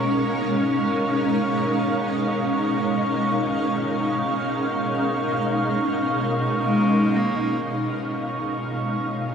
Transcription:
Already playing: B2 G#3 C#4 D#4 A#4 F5 C#6
6.63 G#3
7.15 A#3
7.65 B3 C#6
8.68 C#4
9.19 C#4

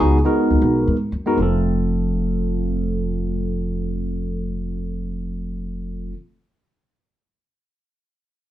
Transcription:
0.00 C#2 G#3 B3 D#4 F#4 G#4
0.24 G#3 B3 D#4 F#4 A#4
0.50 C#2
0.62 B1
0.87 G#2
1.12 F#2
1.26 G#3 B3 D#4 F#4 A#4
1.36 F1 F3 A3 C4
1.40 F4 A4

